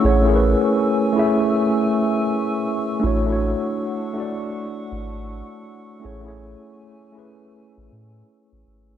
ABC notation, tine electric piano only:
X:1
M:4/4
L:1/16
Q:"Swing 16ths" 1/4=80
K:A
V:1 name="Tine electric piano"
[A,CEGc] [A,CEG_B=B]4- [A,CEG_B=B] [A,CEGe]6- [A,CEGe] z3 | [A,DEFc] [A,DEFc]4- [A,DEFc] [A,DEFd]6- [A,DEFd] z3 | [A,CEGc] [A,CEGc]4- [A,CEGc] [A,CEGB]6- [A,CEGB] z3 |]